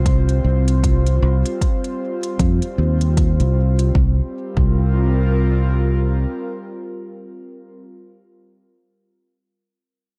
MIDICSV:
0, 0, Header, 1, 4, 480
1, 0, Start_track
1, 0, Tempo, 779221
1, 512, Time_signature, 4, 2, 24, 8
1, 6275, End_track
2, 0, Start_track
2, 0, Title_t, "Analog synth pad"
2, 0, Program_c, 0, 89
2, 0, Note_on_c, 0, 55, 82
2, 0, Note_on_c, 0, 60, 84
2, 0, Note_on_c, 0, 65, 70
2, 0, Note_on_c, 0, 72, 88
2, 2427, Note_off_c, 0, 55, 0
2, 2433, Note_off_c, 0, 60, 0
2, 2434, Note_on_c, 0, 55, 74
2, 2435, Note_off_c, 0, 65, 0
2, 2459, Note_off_c, 0, 72, 0
2, 2516, Note_on_c, 0, 60, 71
2, 2596, Note_on_c, 0, 65, 72
2, 2654, Note_on_c, 0, 70, 72
2, 4816, Note_off_c, 0, 55, 0
2, 4820, Note_off_c, 0, 60, 0
2, 4821, Note_off_c, 0, 70, 0
2, 4822, Note_off_c, 0, 65, 0
2, 6275, End_track
3, 0, Start_track
3, 0, Title_t, "Fingered electric bass"
3, 0, Program_c, 1, 33
3, 0, Note_on_c, 1, 36, 72
3, 254, Note_off_c, 1, 36, 0
3, 273, Note_on_c, 1, 36, 69
3, 734, Note_off_c, 1, 36, 0
3, 754, Note_on_c, 1, 36, 86
3, 876, Note_off_c, 1, 36, 0
3, 1476, Note_on_c, 1, 41, 67
3, 1597, Note_off_c, 1, 41, 0
3, 1714, Note_on_c, 1, 39, 78
3, 2091, Note_off_c, 1, 39, 0
3, 2095, Note_on_c, 1, 36, 84
3, 2414, Note_off_c, 1, 36, 0
3, 2433, Note_on_c, 1, 36, 82
3, 2582, Note_off_c, 1, 36, 0
3, 2813, Note_on_c, 1, 36, 84
3, 3848, Note_off_c, 1, 36, 0
3, 6275, End_track
4, 0, Start_track
4, 0, Title_t, "Drums"
4, 35, Note_on_c, 9, 36, 89
4, 35, Note_on_c, 9, 42, 44
4, 96, Note_off_c, 9, 36, 0
4, 97, Note_off_c, 9, 42, 0
4, 177, Note_on_c, 9, 42, 25
4, 239, Note_off_c, 9, 42, 0
4, 418, Note_on_c, 9, 42, 36
4, 479, Note_off_c, 9, 42, 0
4, 515, Note_on_c, 9, 36, 84
4, 516, Note_on_c, 9, 42, 47
4, 576, Note_off_c, 9, 36, 0
4, 577, Note_off_c, 9, 42, 0
4, 656, Note_on_c, 9, 42, 26
4, 718, Note_off_c, 9, 42, 0
4, 897, Note_on_c, 9, 42, 36
4, 958, Note_off_c, 9, 42, 0
4, 994, Note_on_c, 9, 36, 85
4, 996, Note_on_c, 9, 42, 47
4, 1056, Note_off_c, 9, 36, 0
4, 1058, Note_off_c, 9, 42, 0
4, 1135, Note_on_c, 9, 42, 25
4, 1197, Note_off_c, 9, 42, 0
4, 1375, Note_on_c, 9, 42, 36
4, 1436, Note_off_c, 9, 42, 0
4, 1475, Note_on_c, 9, 36, 91
4, 1475, Note_on_c, 9, 42, 45
4, 1536, Note_off_c, 9, 36, 0
4, 1537, Note_off_c, 9, 42, 0
4, 1615, Note_on_c, 9, 42, 26
4, 1676, Note_off_c, 9, 42, 0
4, 1854, Note_on_c, 9, 42, 37
4, 1916, Note_off_c, 9, 42, 0
4, 1954, Note_on_c, 9, 36, 89
4, 1954, Note_on_c, 9, 42, 46
4, 2015, Note_off_c, 9, 42, 0
4, 2016, Note_off_c, 9, 36, 0
4, 2094, Note_on_c, 9, 42, 25
4, 2155, Note_off_c, 9, 42, 0
4, 2334, Note_on_c, 9, 42, 36
4, 2396, Note_off_c, 9, 42, 0
4, 2433, Note_on_c, 9, 36, 95
4, 2495, Note_off_c, 9, 36, 0
4, 2813, Note_on_c, 9, 36, 93
4, 2875, Note_off_c, 9, 36, 0
4, 6275, End_track
0, 0, End_of_file